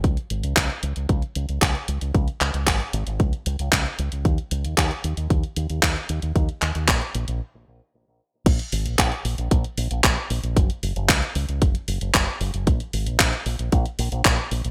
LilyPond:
<<
  \new Staff \with { instrumentName = "Fingered electric bass" } { \clef bass \time 4/4 \key ees \dorian \tempo 4 = 114 des,16 r16 aes,,16 des,16 des,16 r16 des,16 des,16 des,16 r16 des,16 des,16 des,16 r16 des,16 des,16 | des,16 r16 des,16 des,16 aes,,16 r16 aes,,16 aes,,16 des,16 r16 des,16 des,16 des,16 r16 des,16 des,16 | ees,16 r16 des,16 ees,16 ees,16 r16 ees,16 ees,16 ees,16 r16 ees,16 ees,16 ees,16 r16 ees,16 ees,16 | ees,16 r16 ees,16 ees,16 bes,,16 r16 bes,,16 bes,,16 r2 |
bes,,16 r16 aes,,16 bes,,16 bes,,16 r16 bes,,16 bes,,16 bes,,16 r16 bes,,16 bes,,16 bes,,16 r16 bes,,16 bes,,16 | ges,,16 r16 ges,,16 ges,,16 des,16 r16 des,16 des,16 ges,,16 r16 ges,,16 ges,,16 ges,,16 r16 ges,,16 ges,,16 | bes,,16 r16 aes,,16 bes,,16 bes,,16 r16 bes,,16 bes,,16 bes,,16 r16 bes,,16 bes,,16 bes,,16 r16 bes,,16 bes,,16 | }
  \new DrumStaff \with { instrumentName = "Drums" } \drummode { \time 4/4 <hh bd>16 hh16 hh16 hh16 <hc hh bd>16 hh16 hh16 hh16 <hh bd>16 hh16 hh16 hh16 <hc hh bd>16 hh16 hh16 hh16 | <hh bd>16 hh16 <hc hh>16 hh16 <hc hh bd>16 hh16 hh16 hh16 <hh bd>16 hh16 hh16 hh16 <hc hh bd>16 hh16 hh16 hh16 | <hh bd>16 hh16 hh16 hh16 <hc hh bd>16 hh16 hh16 hh16 <hh bd>16 hh16 hh16 hh16 <hc bd>16 hh16 hh16 hh16 | <hh bd>16 hh16 <hc hh>16 hh16 <hc hh bd>16 hh16 hh16 hh16 r4 r4 |
<cymc hh bd>16 hh16 hho16 hh16 <hc hh bd>16 hh16 hho16 hh16 <hh bd>16 hh16 hho16 hh16 <hc hh bd>8 hho16 hh16 | <hh bd>16 hh16 hho16 hh16 <hc hh bd>16 hh16 hho16 hh16 <hh bd>16 hh16 hho16 hh16 <hc hh bd>8 hho16 hh16 | <hh bd>16 hh16 hho16 hh16 <hc hh bd>16 hh16 hho16 hh16 <hh bd>16 hh16 hho16 hh16 <hc hh bd>8 hho16 hh16 | }
>>